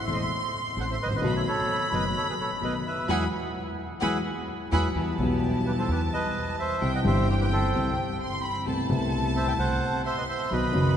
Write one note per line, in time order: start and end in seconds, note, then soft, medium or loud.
0.00 1.19 C6 medium
0.04 0.27 E1 soft
0.04 0.27 E2 soft
0.04 0.27 E3 soft
0.04 0.27 A3 soft
0.04 0.27 C4 soft
0.04 0.27 E4 soft
0.04 0.27 A4 soft
0.04 0.13 E5 medium
0.13 0.22 D#5 medium
0.23 0.31 E5 medium
0.76 0.96 A1 soft
0.76 0.96 A1 medium
0.76 0.96 A2 soft
0.76 0.96 E3 soft
0.76 0.96 A3 soft
0.76 0.96 C4 soft
0.76 0.96 E4 soft
0.76 0.96 A4 soft
0.76 0.84 C5 medium
0.76 0.85 F#5 medium
0.91 0.95 C5 medium
0.91 0.97 E5 medium
1.02 1.11 G#1 soft
1.02 1.10 G#1 soft
1.02 1.08 B4 medium
1.02 1.08 D#5 medium
1.07 1.17 A1 soft
1.07 1.16 A1 medium
1.07 1.14 C5 medium
1.15 1.22 A#1 medium
1.15 1.23 A#1 medium
1.15 1.34 B4 medium
1.15 1.35 D#5 medium
1.22 1.42 B1 medium
1.22 1.42 B2 medium
1.22 1.42 D#3 medium
1.22 1.42 A3 medium
1.22 1.42 B3 medium
1.22 1.42 D#4 medium
1.22 1.42 F#4 medium
1.22 1.43 A4 medium
1.22 3.07 B5 medium
1.36 1.41 C#5 medium
1.36 1.41 E5 medium
1.48 1.90 A4 medium
1.48 1.95 C#5 medium
1.92 2.12 F#1 medium
1.92 2.12 F#1 soft
1.92 2.12 F#2 soft
1.92 2.12 D#3 soft
1.92 2.12 A3 soft
1.92 2.12 B3 soft
1.92 2.12 D#4 soft
1.92 2.12 F#4 soft
1.92 2.12 A4 soft
1.92 2.04 B4 medium
1.92 2.04 D#5 medium
2.17 2.27 A4 medium
2.17 2.27 C#5 medium
2.29 2.34 G#4 medium
2.29 2.34 B4 medium
2.41 2.51 A4 medium
2.41 2.51 C#5 medium
2.61 2.81 B1 soft
2.61 2.81 B1 medium
2.61 2.81 B2 soft
2.61 2.81 D#3 soft
2.61 2.81 A3 soft
2.61 2.81 B3 soft
2.61 2.82 B3 soft
2.61 2.82 D#4 soft
2.61 2.82 F#4 soft
2.61 2.81 A4 soft
2.61 2.74 B4 medium
2.61 2.74 D#5 medium
2.87 3.08 B4 medium
2.87 3.08 E5 medium
3.08 3.26 E2 medium
3.08 3.23 E3 medium
3.08 3.23 F#3 medium
3.08 3.24 G#3 medium
3.08 3.23 E4 medium
3.08 3.23 F#4 medium
3.08 3.23 G#4 medium
3.08 3.25 G#4 medium
3.08 3.25 B4 medium
3.08 3.25 E5 medium
3.08 3.24 F#5 medium
3.08 3.23 G#5 medium
3.08 3.23 B5 medium
4.01 4.19 E2 medium
4.01 4.17 E3 medium
4.01 4.17 F#3 medium
4.01 4.17 G#3 medium
4.01 4.17 E4 medium
4.01 4.16 F#4 medium
4.01 4.16 G#4 medium
4.01 4.18 G#4 medium
4.01 4.18 B4 medium
4.01 4.18 E5 medium
4.01 4.17 F#5 medium
4.01 4.17 G#5 medium
4.01 4.17 B5 medium
4.72 4.89 E2 medium
4.72 4.87 E3 medium
4.72 4.87 F#3 medium
4.72 4.87 G#3 medium
4.72 4.87 E4 medium
4.72 4.87 F#4 medium
4.72 4.87 G#4 medium
4.72 4.87 B4 medium
4.72 4.87 E5 medium
4.72 4.87 F#5 medium
4.72 4.87 G#5 medium
4.72 4.87 B5 medium
4.94 5.15 E2 medium
4.94 5.16 E2 soft
4.94 5.16 E3 soft
4.94 5.15 G3 soft
4.94 5.15 B3 soft
4.94 5.16 B3 soft
4.94 5.15 E4 soft
4.94 5.15 G4 soft
4.94 5.16 G4 soft
4.94 6.77 A5 medium
5.18 5.85 B1 medium
5.18 5.86 B1 medium
5.18 5.86 B2 medium
5.18 5.85 E3 medium
5.18 5.86 G3 medium
5.18 5.85 B3 medium
5.18 5.86 B3 medium
5.18 5.85 E4 medium
5.18 5.85 G4 medium
5.22 5.87 G4 medium
5.67 5.72 G4 medium
5.67 5.72 B4 medium
5.79 5.89 A4 soft
5.79 5.89 C5 medium
5.88 6.08 E2 medium
5.88 6.09 E2 soft
5.88 6.09 E3 soft
5.88 6.09 G3 soft
5.88 6.08 B3 soft
5.88 6.09 B3 soft
5.88 6.08 E4 soft
5.88 6.08 G4 medium
5.88 6.09 G4 soft
5.88 6.02 G4 medium
5.88 6.01 B4 medium
6.13 6.56 B4 medium
6.13 6.56 D#5 medium
6.59 6.92 C5 medium
6.59 6.91 E5 medium
6.81 7.01 C2 medium
6.81 7.01 C3 soft
6.81 7.01 E3 soft
6.81 7.01 G3 soft
6.81 7.01 C4 soft
6.81 7.01 E4 soft
6.81 7.01 G4 soft
6.81 8.20 G5 medium
6.95 7.00 D#5 medium
6.95 7.00 F#5 medium
7.02 7.70 G1 medium
7.02 7.71 G1 medium
7.02 7.70 G2 medium
7.02 7.69 E3 medium
7.02 7.70 G3 medium
7.02 7.70 C4 medium
7.02 7.71 C4 medium
7.02 7.70 E4 medium
7.02 7.70 G4 medium
7.02 7.71 G4 medium
7.02 7.27 C5 medium
7.02 7.27 E5 medium
7.30 7.35 G4 medium
7.30 7.35 C5 medium
7.41 7.46 G4 medium
7.41 7.46 B4 medium
7.52 7.94 A4 medium
7.52 7.95 C5 medium
7.74 7.94 C2 medium
7.74 7.94 C2 soft
7.74 7.94 C3 soft
7.74 7.94 E3 soft
7.74 7.94 G3 soft
7.74 7.93 C4 soft
7.74 7.94 C4 soft
7.74 7.93 E4 soft
7.74 7.93 G4 soft
7.74 7.94 G4 soft
8.21 8.42 C6 medium
8.44 8.66 B5 medium
8.66 8.86 C2 medium
8.66 8.86 C3 medium
8.66 8.86 A3 soft
8.66 8.85 B3 soft
8.66 8.85 C4 soft
8.66 8.86 E4 soft
8.66 8.85 A4 soft
8.66 10.01 A5 loud
8.87 9.55 C2 medium
8.87 8.89 C3 medium
8.87 9.55 C3 medium
8.87 9.55 A3 medium
8.87 9.55 B3 medium
8.87 9.55 A4 medium
8.91 9.56 E4 medium
9.36 9.47 C5 medium
9.36 9.47 E5 medium
9.48 9.53 E5 medium
9.48 9.53 G5 medium
9.58 9.78 C2 medium
9.58 9.78 C2 soft
9.58 9.78 C3 soft
9.58 9.78 A3 soft
9.58 9.78 B3 soft
9.58 9.78 C4 soft
9.58 9.78 E4 soft
9.58 9.78 A4 medium
9.58 10.02 C5 medium
9.58 10.02 F#5 medium
10.05 10.16 C5 medium
10.05 10.16 E5 medium
10.05 10.48 C6 medium
10.18 10.23 B4 medium
10.18 10.22 D#5 medium
10.30 10.50 C5 medium
10.30 10.52 E5 medium
10.51 10.70 B1 medium
10.51 10.70 B2 medium
10.51 10.70 D#3 soft
10.51 10.70 F#3 soft
10.51 10.70 B3 soft
10.51 10.70 D#4 soft
10.51 10.70 F#4 soft
10.51 10.95 B4 medium
10.51 10.95 D#5 medium
10.51 10.97 B5 medium
10.72 10.97 F#1 medium
10.72 10.97 F#2 medium
10.72 10.97 D#3 medium
10.72 10.97 F#3 medium
10.72 10.97 B3 medium
10.72 10.97 D#4 medium
10.72 10.97 F#4 medium